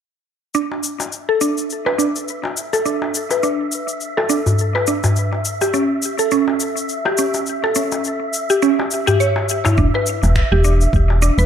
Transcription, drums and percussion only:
0.55 cabasa soft
0.72 darbuka ka soft
0.83 cabasa medium
1.00 darbuka ka medium
1.00 cabasa soft
1.12 cabasa soft
1.41 cabasa medium
1.58 cabasa soft
1.70 cabasa soft
1.86 darbuka tek medium
1.99 cabasa medium
2.16 cabasa soft
2.28 cabasa soft
2.44 darbuka ka medium
2.44 darbuka tek soft
2.57 cabasa medium
2.73 darbuka ka soft
2.73 cabasa soft
2.86 cabasa soft
3.02 darbuka ka medium
3.15 cabasa medium
3.31 darbuka ka medium
3.31 cabasa soft
3.43 cabasa soft
3.72 cabasa medium
3.88 cabasa soft
4.01 cabasa soft
4.17 darbuka ka soft
4.17 darbuka tek medium
4.30 cabasa medium
4.46 darbuka dum medium
4.46 cabasa soft
4.59 cabasa soft
4.76 darbuka tek medium
4.87 cabasa medium
5.04 darbuka tek medium
5.04 darbuka dum medium
5.04 cabasa soft
5.16 cabasa soft
5.33 darbuka ka soft
5.45 cabasa medium
5.61 darbuka ka medium
5.61 cabasa soft
5.74 cabasa soft
6.02 cabasa medium
6.19 cabasa soft
6.31 cabasa soft
6.48 darbuka tek soft
6.60 cabasa medium
6.77 cabasa soft
6.89 cabasa soft
7.05 darbuka ka medium
7.05 darbuka tek medium
7.18 cabasa medium
7.34 darbuka ka soft
7.34 cabasa soft
7.46 cabasa soft
7.64 darbuka ka medium
7.75 cabasa medium
7.92 darbuka ka medium
7.92 cabasa soft
8.04 cabasa soft
8.33 cabasa medium
8.50 cabasa soft
8.62 cabasa soft
8.79 darbuka ka soft
8.79 darbuka tek medium
8.91 cabasa medium
9.08 darbuka dum medium
9.08 cabasa soft
9.20 cabasa soft
9.36 darbuka tek medium
9.49 cabasa medium
9.65 darbuka tek medium
9.65 darbuka dum loud
9.65 cabasa soft
9.78 kick loud
9.78 cabasa soft
9.94 darbuka ka medium
10.06 cabasa medium
10.23 darbuka ka medium
10.23 cabasa soft
10.36 finger snap medium
10.36 kick medium
10.36 cabasa soft
10.64 cabasa medium
10.81 cabasa soft
10.93 kick medium
10.93 cabasa soft
11.10 darbuka tek soft
11.22 cabasa medium
11.39 cabasa soft

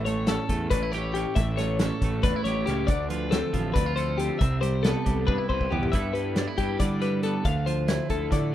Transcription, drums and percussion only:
0.06 closed hi-hat medium
0.27 snare loud
0.27 closed hi-hat medium
0.49 kick medium
0.49 closed hi-hat medium
0.71 kick medium
0.71 closed hi-hat medium
0.93 snare soft
0.93 closed hi-hat medium
1.15 closed hi-hat medium
1.36 kick loud
1.36 closed hi-hat medium
1.58 snare soft
1.58 closed hi-hat medium
1.79 snare loud
1.79 closed hi-hat medium
2.02 kick medium
2.02 closed hi-hat medium
2.23 kick loud
2.23 closed hi-hat medium
2.45 snare soft
2.45 closed hi-hat soft
2.67 snare soft
2.67 closed hi-hat medium
2.88 kick loud
2.88 closed hi-hat medium
3.10 closed hi-hat medium
3.32 snare loud
3.32 closed hi-hat medium
3.54 kick medium
3.54 closed hi-hat medium
3.76 kick loud
3.76 closed hi-hat medium
3.97 closed hi-hat medium
4.19 closed hi-hat medium
4.41 kick loud
4.41 closed hi-hat medium
4.63 closed hi-hat medium
4.84 snare loud
4.84 closed hi-hat medium
5.06 kick medium
5.06 closed hi-hat medium
5.28 kick loud
5.50 kick medium
5.61 kick medium
5.72 floor tom medium
5.83 floor tom medium
5.93 kick medium
5.93 closed hi-hat medium
6.15 closed hi-hat soft
6.36 snare medium
6.36 closed hi-hat medium
6.58 kick medium
6.58 closed hi-hat medium
6.80 kick medium
6.80 snare soft
6.80 closed hi-hat medium
7.02 snare soft
7.02 closed hi-hat soft
7.23 closed hi-hat medium
7.45 kick medium
7.45 closed hi-hat medium
7.67 closed hi-hat medium
7.88 snare medium
7.88 closed hi-hat medium
8.10 kick medium
8.10 closed hi-hat medium
8.32 kick medium
8.32 snare soft
8.32 closed hi-hat medium

